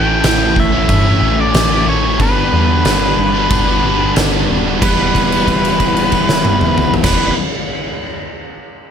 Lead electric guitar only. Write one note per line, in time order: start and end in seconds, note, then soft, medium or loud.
0.00 0.24 G5 medium
0.26 0.58 G5 loud
0.60 1.40 E5 loud
1.40 1.85 D5 medium
1.89 2.22 C#5 medium
2.21 4.13 B4 medium
4.83 6.93 B4 medium
7.04 7.31 B4 medium